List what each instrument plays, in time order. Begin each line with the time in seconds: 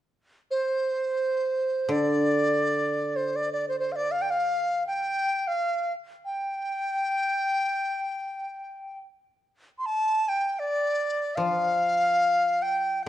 0.51 dizi C5
1.89 guzheng D3, dizi D5
3.16 dizi C5
3.36 dizi D5
3.53 dizi D5
3.69 dizi C5
3.79 dizi C5
3.92 dizi D5 F5
4.11 dizi F5
4.22 dizi G5
4.30 dizi F5
4.87 dizi G5
5.47 dizi F5
6.25 dizi G5
9.79 dizi C6
9.86 dizi A5
10.29 dizi G5
10.59 dizi D5
11.36 guzheng F3, dizi F5
12.62 dizi G5
13.03 dizi D5